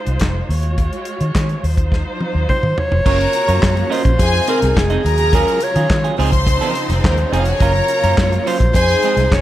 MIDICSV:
0, 0, Header, 1, 8, 480
1, 0, Start_track
1, 0, Tempo, 568720
1, 659, Time_signature, 4, 2, 24, 8
1, 7944, End_track
2, 0, Start_track
2, 0, Title_t, "Alto saxophone"
2, 0, Program_c, 0, 65
2, 2107, Note_on_c, 0, 72, 107
2, 2343, Note_on_c, 0, 73, 111
2, 2355, Note_off_c, 0, 72, 0
2, 3311, Note_on_c, 0, 72, 99
2, 3323, Note_off_c, 0, 73, 0
2, 3786, Note_off_c, 0, 72, 0
2, 3790, Note_on_c, 0, 70, 99
2, 4030, Note_on_c, 0, 68, 98
2, 4042, Note_off_c, 0, 70, 0
2, 4512, Note_on_c, 0, 70, 107
2, 4525, Note_off_c, 0, 68, 0
2, 4753, Note_on_c, 0, 73, 98
2, 4766, Note_off_c, 0, 70, 0
2, 5226, Note_off_c, 0, 73, 0
2, 5947, Note_on_c, 0, 72, 89
2, 6166, Note_off_c, 0, 72, 0
2, 6191, Note_on_c, 0, 73, 115
2, 7150, Note_on_c, 0, 72, 91
2, 7163, Note_off_c, 0, 73, 0
2, 7384, Note_off_c, 0, 72, 0
2, 7389, Note_on_c, 0, 72, 112
2, 7866, Note_on_c, 0, 73, 115
2, 7878, Note_off_c, 0, 72, 0
2, 7944, Note_off_c, 0, 73, 0
2, 7944, End_track
3, 0, Start_track
3, 0, Title_t, "Violin section"
3, 0, Program_c, 1, 48
3, 2583, Note_on_c, 1, 82, 105
3, 2584, Note_on_c, 1, 70, 90
3, 3288, Note_off_c, 1, 70, 0
3, 3288, Note_off_c, 1, 82, 0
3, 3541, Note_on_c, 1, 68, 111
3, 3544, Note_on_c, 1, 80, 124
3, 4011, Note_off_c, 1, 68, 0
3, 4013, Note_off_c, 1, 80, 0
3, 4255, Note_on_c, 1, 82, 109
3, 4260, Note_on_c, 1, 70, 103
3, 4963, Note_off_c, 1, 82, 0
3, 4965, Note_off_c, 1, 70, 0
3, 5210, Note_on_c, 1, 72, 106
3, 5211, Note_on_c, 1, 84, 113
3, 5931, Note_off_c, 1, 72, 0
3, 5932, Note_off_c, 1, 84, 0
3, 5995, Note_on_c, 1, 70, 74
3, 5999, Note_on_c, 1, 58, 62
3, 6047, Note_on_c, 1, 60, 65
3, 6049, Note_on_c, 1, 72, 67
3, 6057, Note_off_c, 1, 70, 0
3, 6059, Note_off_c, 1, 58, 0
3, 6109, Note_on_c, 1, 61, 72
3, 6109, Note_on_c, 1, 73, 75
3, 6113, Note_off_c, 1, 60, 0
3, 6114, Note_off_c, 1, 72, 0
3, 6171, Note_on_c, 1, 63, 74
3, 6171, Note_on_c, 1, 75, 90
3, 6174, Note_off_c, 1, 61, 0
3, 6174, Note_off_c, 1, 73, 0
3, 6232, Note_on_c, 1, 65, 84
3, 6232, Note_on_c, 1, 77, 88
3, 6235, Note_off_c, 1, 63, 0
3, 6235, Note_off_c, 1, 75, 0
3, 6295, Note_off_c, 1, 65, 0
3, 6295, Note_off_c, 1, 77, 0
3, 6300, Note_on_c, 1, 78, 88
3, 6301, Note_on_c, 1, 66, 84
3, 6356, Note_on_c, 1, 80, 88
3, 6358, Note_on_c, 1, 68, 88
3, 6359, Note_off_c, 1, 66, 0
3, 6359, Note_off_c, 1, 78, 0
3, 6412, Note_on_c, 1, 82, 108
3, 6413, Note_on_c, 1, 70, 96
3, 6417, Note_off_c, 1, 80, 0
3, 6418, Note_off_c, 1, 68, 0
3, 7120, Note_off_c, 1, 82, 0
3, 7121, Note_off_c, 1, 70, 0
3, 7375, Note_on_c, 1, 68, 115
3, 7378, Note_on_c, 1, 80, 125
3, 7846, Note_off_c, 1, 68, 0
3, 7848, Note_off_c, 1, 80, 0
3, 7944, End_track
4, 0, Start_track
4, 0, Title_t, "Clean electric guitar"
4, 0, Program_c, 2, 27
4, 2581, Note_on_c, 2, 61, 90
4, 2584, Note_on_c, 2, 65, 76
4, 2585, Note_on_c, 2, 70, 86
4, 2588, Note_on_c, 2, 73, 86
4, 2692, Note_off_c, 2, 73, 0
4, 2697, Note_off_c, 2, 70, 0
4, 2699, Note_off_c, 2, 65, 0
4, 2749, Note_off_c, 2, 61, 0
4, 2936, Note_on_c, 2, 73, 62
4, 2938, Note_on_c, 2, 70, 57
4, 2944, Note_on_c, 2, 65, 54
4, 2946, Note_on_c, 2, 61, 54
4, 3048, Note_off_c, 2, 61, 0
4, 3049, Note_off_c, 2, 65, 0
4, 3051, Note_off_c, 2, 70, 0
4, 3054, Note_off_c, 2, 73, 0
4, 3289, Note_on_c, 2, 61, 88
4, 3294, Note_on_c, 2, 65, 80
4, 3298, Note_on_c, 2, 70, 95
4, 3301, Note_on_c, 2, 75, 97
4, 3411, Note_off_c, 2, 70, 0
4, 3413, Note_off_c, 2, 65, 0
4, 3414, Note_off_c, 2, 75, 0
4, 3463, Note_off_c, 2, 61, 0
4, 3780, Note_on_c, 2, 60, 76
4, 3783, Note_on_c, 2, 63, 73
4, 3784, Note_on_c, 2, 68, 81
4, 3788, Note_on_c, 2, 72, 80
4, 3889, Note_off_c, 2, 72, 0
4, 3892, Note_off_c, 2, 68, 0
4, 3895, Note_off_c, 2, 63, 0
4, 3948, Note_off_c, 2, 60, 0
4, 4137, Note_on_c, 2, 75, 89
4, 4139, Note_on_c, 2, 68, 75
4, 4145, Note_on_c, 2, 63, 80
4, 4149, Note_on_c, 2, 60, 70
4, 4257, Note_off_c, 2, 60, 0
4, 4258, Note_off_c, 2, 68, 0
4, 4259, Note_off_c, 2, 63, 0
4, 4264, Note_off_c, 2, 75, 0
4, 4502, Note_on_c, 2, 54, 85
4, 4509, Note_on_c, 2, 61, 82
4, 4512, Note_on_c, 2, 65, 86
4, 4515, Note_on_c, 2, 68, 102
4, 4722, Note_off_c, 2, 54, 0
4, 4725, Note_off_c, 2, 61, 0
4, 4727, Note_off_c, 2, 65, 0
4, 4728, Note_off_c, 2, 68, 0
4, 4861, Note_on_c, 2, 68, 56
4, 4863, Note_on_c, 2, 65, 60
4, 4865, Note_on_c, 2, 61, 47
4, 4869, Note_on_c, 2, 54, 45
4, 4975, Note_off_c, 2, 54, 0
4, 4976, Note_off_c, 2, 61, 0
4, 4978, Note_off_c, 2, 65, 0
4, 4982, Note_off_c, 2, 68, 0
4, 5099, Note_on_c, 2, 68, 71
4, 5101, Note_on_c, 2, 65, 63
4, 5103, Note_on_c, 2, 61, 57
4, 5107, Note_on_c, 2, 54, 55
4, 5211, Note_off_c, 2, 54, 0
4, 5215, Note_off_c, 2, 61, 0
4, 5215, Note_on_c, 2, 53, 93
4, 5217, Note_off_c, 2, 68, 0
4, 5218, Note_on_c, 2, 60, 91
4, 5219, Note_off_c, 2, 65, 0
4, 5222, Note_on_c, 2, 63, 103
4, 5227, Note_on_c, 2, 68, 107
4, 5334, Note_off_c, 2, 68, 0
4, 5337, Note_off_c, 2, 63, 0
4, 5342, Note_off_c, 2, 60, 0
4, 5384, Note_off_c, 2, 53, 0
4, 5578, Note_on_c, 2, 70, 88
4, 5581, Note_on_c, 2, 63, 78
4, 5585, Note_on_c, 2, 60, 76
4, 5587, Note_on_c, 2, 53, 65
4, 5701, Note_off_c, 2, 53, 0
4, 5701, Note_off_c, 2, 60, 0
4, 5705, Note_off_c, 2, 63, 0
4, 5713, Note_off_c, 2, 70, 0
4, 6180, Note_on_c, 2, 53, 84
4, 6180, Note_on_c, 2, 60, 84
4, 6184, Note_on_c, 2, 63, 93
4, 6190, Note_on_c, 2, 68, 86
4, 6291, Note_off_c, 2, 68, 0
4, 6294, Note_off_c, 2, 63, 0
4, 6298, Note_off_c, 2, 60, 0
4, 6347, Note_off_c, 2, 53, 0
4, 6422, Note_on_c, 2, 54, 91
4, 6425, Note_on_c, 2, 61, 84
4, 6430, Note_on_c, 2, 65, 89
4, 6432, Note_on_c, 2, 70, 96
4, 6531, Note_off_c, 2, 70, 0
4, 6534, Note_off_c, 2, 65, 0
4, 6536, Note_off_c, 2, 61, 0
4, 6588, Note_off_c, 2, 54, 0
4, 6784, Note_on_c, 2, 70, 78
4, 6788, Note_on_c, 2, 61, 52
4, 6789, Note_on_c, 2, 65, 65
4, 6792, Note_on_c, 2, 54, 55
4, 6891, Note_off_c, 2, 54, 0
4, 6894, Note_off_c, 2, 61, 0
4, 6897, Note_off_c, 2, 65, 0
4, 6898, Note_off_c, 2, 70, 0
4, 7142, Note_on_c, 2, 54, 88
4, 7144, Note_on_c, 2, 61, 86
4, 7150, Note_on_c, 2, 65, 95
4, 7153, Note_on_c, 2, 72, 96
4, 7254, Note_off_c, 2, 65, 0
4, 7258, Note_off_c, 2, 72, 0
4, 7259, Note_off_c, 2, 61, 0
4, 7307, Note_off_c, 2, 54, 0
4, 7628, Note_on_c, 2, 56, 80
4, 7632, Note_on_c, 2, 60, 79
4, 7635, Note_on_c, 2, 63, 81
4, 7638, Note_on_c, 2, 68, 97
4, 7734, Note_off_c, 2, 68, 0
4, 7738, Note_off_c, 2, 63, 0
4, 7741, Note_off_c, 2, 60, 0
4, 7790, Note_off_c, 2, 56, 0
4, 7944, End_track
5, 0, Start_track
5, 0, Title_t, "String section"
5, 0, Program_c, 3, 48
5, 0, Note_on_c, 3, 56, 71
5, 0, Note_on_c, 3, 63, 65
5, 0, Note_on_c, 3, 65, 65
5, 0, Note_on_c, 3, 72, 79
5, 410, Note_off_c, 3, 56, 0
5, 411, Note_off_c, 3, 65, 0
5, 411, Note_off_c, 3, 72, 0
5, 412, Note_off_c, 3, 63, 0
5, 419, Note_on_c, 3, 56, 71
5, 420, Note_on_c, 3, 66, 68
5, 421, Note_on_c, 3, 73, 73
5, 425, Note_on_c, 3, 65, 65
5, 1371, Note_off_c, 3, 56, 0
5, 1371, Note_off_c, 3, 65, 0
5, 1372, Note_off_c, 3, 66, 0
5, 1372, Note_off_c, 3, 73, 0
5, 1380, Note_on_c, 3, 72, 80
5, 1381, Note_on_c, 3, 65, 57
5, 1382, Note_on_c, 3, 54, 70
5, 1384, Note_on_c, 3, 63, 68
5, 2569, Note_off_c, 3, 72, 0
5, 2570, Note_off_c, 3, 54, 0
5, 2570, Note_off_c, 3, 65, 0
5, 2571, Note_off_c, 3, 63, 0
5, 2581, Note_on_c, 3, 49, 79
5, 2583, Note_on_c, 3, 58, 76
5, 2584, Note_on_c, 3, 65, 70
5, 2584, Note_on_c, 3, 66, 80
5, 3532, Note_off_c, 3, 49, 0
5, 3533, Note_off_c, 3, 58, 0
5, 3533, Note_off_c, 3, 66, 0
5, 3539, Note_on_c, 3, 48, 85
5, 3539, Note_on_c, 3, 56, 78
5, 3544, Note_on_c, 3, 63, 75
5, 4245, Note_off_c, 3, 65, 0
5, 4252, Note_off_c, 3, 48, 0
5, 4255, Note_off_c, 3, 63, 0
5, 4256, Note_on_c, 3, 65, 83
5, 4257, Note_on_c, 3, 54, 77
5, 4258, Note_on_c, 3, 49, 80
5, 5201, Note_off_c, 3, 56, 0
5, 5207, Note_off_c, 3, 65, 0
5, 5208, Note_off_c, 3, 54, 0
5, 5218, Note_on_c, 3, 53, 75
5, 5219, Note_on_c, 3, 63, 90
5, 5222, Note_on_c, 3, 60, 76
5, 6406, Note_off_c, 3, 53, 0
5, 6406, Note_off_c, 3, 63, 0
5, 6408, Note_off_c, 3, 60, 0
5, 6415, Note_on_c, 3, 65, 94
5, 6418, Note_on_c, 3, 58, 72
5, 6419, Note_on_c, 3, 54, 69
5, 7345, Note_off_c, 3, 49, 0
5, 7367, Note_off_c, 3, 65, 0
5, 7368, Note_off_c, 3, 54, 0
5, 7368, Note_off_c, 3, 58, 0
5, 7375, Note_on_c, 3, 48, 80
5, 7375, Note_on_c, 3, 63, 95
5, 7377, Note_on_c, 3, 53, 73
5, 7379, Note_on_c, 3, 56, 76
5, 7944, Note_off_c, 3, 48, 0
5, 7944, Note_off_c, 3, 53, 0
5, 7944, Note_off_c, 3, 56, 0
5, 7944, Note_off_c, 3, 63, 0
5, 7944, End_track
6, 0, Start_track
6, 0, Title_t, "Fingered electric bass"
6, 0, Program_c, 4, 33
6, 58, Note_on_c, 4, 36, 81
6, 140, Note_off_c, 4, 36, 0
6, 180, Note_on_c, 4, 29, 77
6, 343, Note_off_c, 4, 29, 0
6, 414, Note_on_c, 4, 39, 99
6, 744, Note_off_c, 4, 39, 0
6, 1019, Note_on_c, 4, 51, 84
6, 1101, Note_off_c, 4, 51, 0
6, 1140, Note_on_c, 4, 51, 88
6, 1304, Note_off_c, 4, 51, 0
6, 1380, Note_on_c, 4, 39, 77
6, 1707, Note_off_c, 4, 39, 0
6, 1980, Note_on_c, 4, 39, 89
6, 2062, Note_off_c, 4, 39, 0
6, 2222, Note_on_c, 4, 51, 97
6, 2304, Note_off_c, 4, 51, 0
6, 2463, Note_on_c, 4, 29, 83
6, 2545, Note_off_c, 4, 29, 0
6, 2581, Note_on_c, 4, 30, 103
6, 2745, Note_off_c, 4, 30, 0
6, 2941, Note_on_c, 4, 42, 92
6, 3023, Note_off_c, 4, 42, 0
6, 3061, Note_on_c, 4, 42, 95
6, 3224, Note_off_c, 4, 42, 0
6, 3420, Note_on_c, 4, 34, 95
6, 3502, Note_off_c, 4, 34, 0
6, 3539, Note_on_c, 4, 41, 108
6, 3703, Note_off_c, 4, 41, 0
6, 3903, Note_on_c, 4, 36, 95
6, 3984, Note_off_c, 4, 36, 0
6, 4023, Note_on_c, 4, 29, 97
6, 4186, Note_off_c, 4, 29, 0
6, 4259, Note_on_c, 4, 39, 94
6, 4586, Note_off_c, 4, 39, 0
6, 4859, Note_on_c, 4, 51, 99
6, 4941, Note_off_c, 4, 51, 0
6, 4983, Note_on_c, 4, 51, 93
6, 5145, Note_off_c, 4, 51, 0
6, 5222, Note_on_c, 4, 37, 90
6, 5548, Note_off_c, 4, 37, 0
6, 5818, Note_on_c, 4, 29, 102
6, 5900, Note_off_c, 4, 29, 0
6, 5942, Note_on_c, 4, 39, 101
6, 6104, Note_off_c, 4, 39, 0
6, 6180, Note_on_c, 4, 29, 93
6, 6343, Note_off_c, 4, 29, 0
6, 6418, Note_on_c, 4, 30, 117
6, 6582, Note_off_c, 4, 30, 0
6, 6783, Note_on_c, 4, 42, 114
6, 6863, Note_off_c, 4, 42, 0
6, 6903, Note_on_c, 4, 42, 97
6, 7065, Note_off_c, 4, 42, 0
6, 7260, Note_on_c, 4, 34, 94
6, 7341, Note_off_c, 4, 34, 0
6, 7380, Note_on_c, 4, 41, 109
6, 7543, Note_off_c, 4, 41, 0
6, 7737, Note_on_c, 4, 36, 85
6, 7819, Note_off_c, 4, 36, 0
6, 7864, Note_on_c, 4, 29, 101
6, 7944, Note_off_c, 4, 29, 0
6, 7944, End_track
7, 0, Start_track
7, 0, Title_t, "Muted clean electric guitar strokes"
7, 2702, Note_on_c, 9, 29, 47
7, 2786, Note_off_c, 9, 29, 0
7, 2823, Note_on_c, 9, 29, 44
7, 2907, Note_off_c, 9, 29, 0
7, 3058, Note_on_c, 9, 29, 48
7, 3142, Note_off_c, 9, 29, 0
7, 3173, Note_on_c, 9, 29, 45
7, 3257, Note_off_c, 9, 29, 0
7, 3417, Note_on_c, 9, 29, 53
7, 3501, Note_off_c, 9, 29, 0
7, 3538, Note_on_c, 9, 29, 53
7, 3623, Note_off_c, 9, 29, 0
7, 3658, Note_on_c, 9, 29, 47
7, 3742, Note_off_c, 9, 29, 0
7, 3900, Note_on_c, 9, 29, 45
7, 3984, Note_off_c, 9, 29, 0
7, 4018, Note_on_c, 9, 29, 43
7, 4102, Note_off_c, 9, 29, 0
7, 4387, Note_on_c, 9, 29, 44
7, 4471, Note_off_c, 9, 29, 0
7, 5344, Note_on_c, 9, 29, 54
7, 5428, Note_off_c, 9, 29, 0
7, 5464, Note_on_c, 9, 29, 47
7, 5549, Note_off_c, 9, 29, 0
7, 5826, Note_on_c, 9, 29, 52
7, 5910, Note_off_c, 9, 29, 0
7, 5948, Note_on_c, 9, 29, 50
7, 6033, Note_off_c, 9, 29, 0
7, 6067, Note_on_c, 9, 29, 44
7, 6151, Note_off_c, 9, 29, 0
7, 6301, Note_on_c, 9, 29, 54
7, 6385, Note_off_c, 9, 29, 0
7, 6541, Note_on_c, 9, 29, 60
7, 6626, Note_off_c, 9, 29, 0
7, 6661, Note_on_c, 9, 29, 40
7, 6746, Note_off_c, 9, 29, 0
7, 7025, Note_on_c, 9, 29, 48
7, 7109, Note_off_c, 9, 29, 0
7, 7262, Note_on_c, 9, 29, 42
7, 7346, Note_off_c, 9, 29, 0
7, 7380, Note_on_c, 9, 29, 38
7, 7464, Note_off_c, 9, 29, 0
7, 7505, Note_on_c, 9, 29, 47
7, 7590, Note_off_c, 9, 29, 0
7, 7744, Note_on_c, 9, 29, 53
7, 7828, Note_off_c, 9, 29, 0
7, 7862, Note_on_c, 9, 29, 42
7, 7944, Note_off_c, 9, 29, 0
7, 7944, End_track
8, 0, Start_track
8, 0, Title_t, "Drums"
8, 55, Note_on_c, 9, 42, 47
8, 139, Note_off_c, 9, 42, 0
8, 165, Note_on_c, 9, 42, 79
8, 178, Note_on_c, 9, 36, 88
8, 184, Note_on_c, 9, 39, 76
8, 185, Note_on_c, 9, 38, 91
8, 249, Note_off_c, 9, 42, 0
8, 263, Note_off_c, 9, 36, 0
8, 269, Note_off_c, 9, 38, 0
8, 269, Note_off_c, 9, 39, 0
8, 426, Note_on_c, 9, 46, 64
8, 511, Note_off_c, 9, 46, 0
8, 531, Note_on_c, 9, 42, 47
8, 615, Note_off_c, 9, 42, 0
8, 657, Note_on_c, 9, 36, 98
8, 657, Note_on_c, 9, 42, 61
8, 742, Note_off_c, 9, 36, 0
8, 742, Note_off_c, 9, 42, 0
8, 782, Note_on_c, 9, 42, 33
8, 867, Note_off_c, 9, 42, 0
8, 889, Note_on_c, 9, 42, 55
8, 974, Note_off_c, 9, 42, 0
8, 1017, Note_on_c, 9, 42, 44
8, 1102, Note_off_c, 9, 42, 0
8, 1140, Note_on_c, 9, 36, 112
8, 1143, Note_on_c, 9, 38, 93
8, 1143, Note_on_c, 9, 39, 86
8, 1146, Note_on_c, 9, 42, 80
8, 1224, Note_off_c, 9, 36, 0
8, 1227, Note_off_c, 9, 39, 0
8, 1228, Note_off_c, 9, 38, 0
8, 1230, Note_off_c, 9, 42, 0
8, 1261, Note_on_c, 9, 42, 28
8, 1345, Note_off_c, 9, 42, 0
8, 1386, Note_on_c, 9, 46, 62
8, 1470, Note_off_c, 9, 46, 0
8, 1498, Note_on_c, 9, 36, 96
8, 1500, Note_on_c, 9, 42, 45
8, 1582, Note_off_c, 9, 36, 0
8, 1584, Note_off_c, 9, 42, 0
8, 1619, Note_on_c, 9, 36, 99
8, 1628, Note_on_c, 9, 38, 46
8, 1703, Note_off_c, 9, 36, 0
8, 1712, Note_off_c, 9, 38, 0
8, 1861, Note_on_c, 9, 48, 65
8, 1945, Note_off_c, 9, 48, 0
8, 2101, Note_on_c, 9, 47, 71
8, 2103, Note_on_c, 9, 36, 96
8, 2186, Note_off_c, 9, 47, 0
8, 2187, Note_off_c, 9, 36, 0
8, 2221, Note_on_c, 9, 45, 72
8, 2305, Note_off_c, 9, 45, 0
8, 2344, Note_on_c, 9, 43, 93
8, 2428, Note_off_c, 9, 43, 0
8, 2462, Note_on_c, 9, 43, 80
8, 2547, Note_off_c, 9, 43, 0
8, 2581, Note_on_c, 9, 36, 116
8, 2583, Note_on_c, 9, 49, 100
8, 2665, Note_off_c, 9, 36, 0
8, 2667, Note_off_c, 9, 49, 0
8, 2706, Note_on_c, 9, 42, 36
8, 2791, Note_off_c, 9, 42, 0
8, 2812, Note_on_c, 9, 42, 66
8, 2897, Note_off_c, 9, 42, 0
8, 2941, Note_on_c, 9, 42, 54
8, 3025, Note_off_c, 9, 42, 0
8, 3061, Note_on_c, 9, 36, 106
8, 3061, Note_on_c, 9, 39, 83
8, 3062, Note_on_c, 9, 38, 120
8, 3145, Note_off_c, 9, 36, 0
8, 3146, Note_off_c, 9, 38, 0
8, 3146, Note_off_c, 9, 39, 0
8, 3182, Note_on_c, 9, 42, 33
8, 3266, Note_off_c, 9, 42, 0
8, 3308, Note_on_c, 9, 46, 62
8, 3392, Note_off_c, 9, 46, 0
8, 3419, Note_on_c, 9, 36, 101
8, 3423, Note_on_c, 9, 42, 52
8, 3504, Note_off_c, 9, 36, 0
8, 3507, Note_off_c, 9, 42, 0
8, 3539, Note_on_c, 9, 36, 118
8, 3541, Note_on_c, 9, 42, 84
8, 3624, Note_off_c, 9, 36, 0
8, 3626, Note_off_c, 9, 42, 0
8, 3664, Note_on_c, 9, 42, 34
8, 3748, Note_off_c, 9, 42, 0
8, 3777, Note_on_c, 9, 42, 74
8, 3862, Note_off_c, 9, 42, 0
8, 3900, Note_on_c, 9, 42, 49
8, 3911, Note_on_c, 9, 38, 41
8, 3985, Note_off_c, 9, 42, 0
8, 3996, Note_off_c, 9, 38, 0
8, 4022, Note_on_c, 9, 36, 101
8, 4030, Note_on_c, 9, 38, 116
8, 4030, Note_on_c, 9, 39, 86
8, 4106, Note_off_c, 9, 36, 0
8, 4114, Note_off_c, 9, 39, 0
8, 4115, Note_off_c, 9, 38, 0
8, 4135, Note_on_c, 9, 42, 37
8, 4219, Note_off_c, 9, 42, 0
8, 4269, Note_on_c, 9, 42, 76
8, 4354, Note_off_c, 9, 42, 0
8, 4370, Note_on_c, 9, 42, 57
8, 4455, Note_off_c, 9, 42, 0
8, 4498, Note_on_c, 9, 36, 126
8, 4498, Note_on_c, 9, 42, 74
8, 4582, Note_off_c, 9, 42, 0
8, 4583, Note_off_c, 9, 36, 0
8, 4623, Note_on_c, 9, 42, 39
8, 4708, Note_off_c, 9, 42, 0
8, 4731, Note_on_c, 9, 42, 62
8, 4815, Note_off_c, 9, 42, 0
8, 4858, Note_on_c, 9, 42, 48
8, 4942, Note_off_c, 9, 42, 0
8, 4980, Note_on_c, 9, 36, 113
8, 4983, Note_on_c, 9, 39, 96
8, 4984, Note_on_c, 9, 38, 104
8, 5064, Note_off_c, 9, 36, 0
8, 5068, Note_off_c, 9, 38, 0
8, 5068, Note_off_c, 9, 39, 0
8, 5101, Note_on_c, 9, 42, 36
8, 5186, Note_off_c, 9, 42, 0
8, 5229, Note_on_c, 9, 46, 74
8, 5313, Note_off_c, 9, 46, 0
8, 5338, Note_on_c, 9, 36, 101
8, 5343, Note_on_c, 9, 42, 53
8, 5422, Note_off_c, 9, 36, 0
8, 5428, Note_off_c, 9, 42, 0
8, 5458, Note_on_c, 9, 36, 127
8, 5464, Note_on_c, 9, 42, 78
8, 5543, Note_off_c, 9, 36, 0
8, 5549, Note_off_c, 9, 42, 0
8, 5585, Note_on_c, 9, 42, 38
8, 5670, Note_off_c, 9, 42, 0
8, 5700, Note_on_c, 9, 42, 74
8, 5785, Note_off_c, 9, 42, 0
8, 5822, Note_on_c, 9, 42, 57
8, 5833, Note_on_c, 9, 38, 43
8, 5906, Note_off_c, 9, 42, 0
8, 5917, Note_off_c, 9, 38, 0
8, 5941, Note_on_c, 9, 36, 101
8, 5950, Note_on_c, 9, 38, 113
8, 5950, Note_on_c, 9, 39, 86
8, 6026, Note_off_c, 9, 36, 0
8, 6034, Note_off_c, 9, 39, 0
8, 6035, Note_off_c, 9, 38, 0
8, 6057, Note_on_c, 9, 42, 39
8, 6141, Note_off_c, 9, 42, 0
8, 6190, Note_on_c, 9, 42, 82
8, 6274, Note_off_c, 9, 42, 0
8, 6291, Note_on_c, 9, 42, 51
8, 6375, Note_off_c, 9, 42, 0
8, 6417, Note_on_c, 9, 42, 81
8, 6418, Note_on_c, 9, 36, 119
8, 6502, Note_off_c, 9, 42, 0
8, 6503, Note_off_c, 9, 36, 0
8, 6545, Note_on_c, 9, 42, 38
8, 6630, Note_off_c, 9, 42, 0
8, 6654, Note_on_c, 9, 42, 61
8, 6738, Note_off_c, 9, 42, 0
8, 6782, Note_on_c, 9, 42, 52
8, 6866, Note_off_c, 9, 42, 0
8, 6901, Note_on_c, 9, 36, 111
8, 6904, Note_on_c, 9, 38, 112
8, 6904, Note_on_c, 9, 39, 94
8, 6986, Note_off_c, 9, 36, 0
8, 6988, Note_off_c, 9, 39, 0
8, 6989, Note_off_c, 9, 38, 0
8, 7025, Note_on_c, 9, 42, 38
8, 7110, Note_off_c, 9, 42, 0
8, 7149, Note_on_c, 9, 46, 68
8, 7233, Note_off_c, 9, 46, 0
8, 7260, Note_on_c, 9, 36, 97
8, 7264, Note_on_c, 9, 42, 54
8, 7345, Note_off_c, 9, 36, 0
8, 7349, Note_off_c, 9, 42, 0
8, 7380, Note_on_c, 9, 36, 120
8, 7386, Note_on_c, 9, 42, 88
8, 7465, Note_off_c, 9, 36, 0
8, 7470, Note_off_c, 9, 42, 0
8, 7507, Note_on_c, 9, 42, 38
8, 7591, Note_off_c, 9, 42, 0
8, 7618, Note_on_c, 9, 42, 75
8, 7702, Note_off_c, 9, 42, 0
8, 7742, Note_on_c, 9, 42, 54
8, 7753, Note_on_c, 9, 38, 45
8, 7826, Note_off_c, 9, 42, 0
8, 7837, Note_off_c, 9, 38, 0
8, 7863, Note_on_c, 9, 36, 112
8, 7872, Note_on_c, 9, 38, 100
8, 7872, Note_on_c, 9, 39, 92
8, 7944, Note_off_c, 9, 36, 0
8, 7944, Note_off_c, 9, 38, 0
8, 7944, Note_off_c, 9, 39, 0
8, 7944, End_track
0, 0, End_of_file